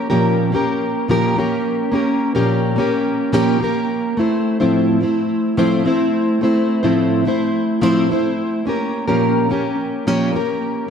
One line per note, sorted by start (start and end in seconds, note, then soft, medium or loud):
0.10 0.53 A#2 medium
0.10 0.53 F3 medium
0.10 0.51 A#3 medium
0.10 0.52 C#4 medium
0.10 0.52 G4 medium
0.10 0.52 A#4 medium
0.52 1.08 A#3 medium
0.52 1.09 C#4 medium
0.52 1.09 G4 medium
0.52 1.10 A#4 medium
1.08 1.36 A#2 medium
1.08 1.37 F3 loud
1.08 1.35 A#3 medium
1.08 1.37 C#4 medium
1.08 1.37 G4 loud
1.08 1.38 A#4 loud
1.36 1.90 A#3 medium
1.36 1.92 C#4 medium
1.36 1.93 G4 medium
1.36 1.94 A#4 medium
1.92 2.34 A#3 medium
1.92 2.35 C#4 medium
1.92 2.35 G4 medium
1.92 2.34 A#4 medium
2.35 2.78 A#2 medium
2.35 2.78 F3 medium
2.35 2.75 A#3 medium
2.35 2.77 C#4 medium
2.35 2.77 G4 medium
2.35 2.77 A#4 medium
2.76 3.32 A#3 medium
2.76 3.33 C#4 medium
2.76 3.33 G4 medium
2.76 3.33 A#4 medium
3.32 3.60 A#2 medium
3.32 3.61 F3 medium
3.32 3.59 A#3 loud
3.32 3.60 C#4 loud
3.32 3.61 G4 loud
3.32 3.62 A#4 loud
3.60 4.16 A#3 medium
3.60 4.17 C#4 medium
3.60 4.18 G4 medium
3.64 4.18 A#4 medium
4.17 4.59 A3 medium
4.17 4.60 C4 medium
4.17 4.59 E4 medium
4.17 4.59 C5 medium
4.60 5.03 A2 medium
4.60 5.02 F3 medium
4.60 4.99 A3 medium
4.60 5.01 C4 medium
4.60 5.02 E4 medium
4.60 5.01 C5 medium
5.01 5.56 A3 medium
5.01 5.57 C4 medium
5.01 5.57 E4 medium
5.01 5.58 C5 medium
5.57 5.85 A2 medium
5.57 5.85 F3 medium
5.57 5.84 A3 medium
5.57 5.84 C4 loud
5.57 5.86 E4 loud
5.57 5.86 C5 loud
5.85 6.40 A3 medium
5.85 6.41 C4 medium
5.85 6.42 E4 medium
5.85 6.42 C5 medium
6.41 6.83 A3 medium
6.41 6.83 C4 medium
6.41 6.83 E4 medium
6.41 6.82 C5 medium
6.83 7.26 A2 medium
6.83 7.26 F3 medium
6.83 7.24 A3 medium
6.83 7.25 C4 medium
6.83 7.26 E4 medium
6.83 7.25 C5 medium
7.25 7.81 A3 medium
7.25 7.82 C4 medium
7.25 7.82 E4 medium
7.25 7.83 C5 medium
7.81 8.09 A2 medium
7.81 8.09 F3 loud
7.81 8.08 A3 loud
7.81 8.10 C4 medium
7.81 8.10 E4 loud
7.81 8.11 C5 loud
8.10 8.65 A3 medium
8.10 8.66 C4 medium
8.10 8.67 E4 medium
8.10 8.67 C5 medium
8.65 9.07 A#3 medium
8.65 9.08 C#4 medium
8.65 9.07 G4 medium
8.65 9.06 A#4 medium
9.08 9.51 A#2 medium
9.08 9.51 F3 medium
9.08 9.48 A#3 medium
9.08 9.50 C#4 medium
9.08 9.50 G4 medium
9.08 9.50 A#4 medium
9.50 10.06 A#3 medium
9.50 10.06 C#4 medium
9.50 10.07 G4 medium
9.50 10.07 A#4 medium
10.07 10.34 A#2 medium
10.07 10.34 F3 medium
10.07 10.32 A#3 loud
10.07 10.33 C#4 loud
10.07 10.34 G4 loud
10.07 10.35 A#4 loud
10.33 10.87 A#3 medium
10.33 10.89 C#4 medium
10.33 10.90 G4 medium
10.33 10.90 A#4 medium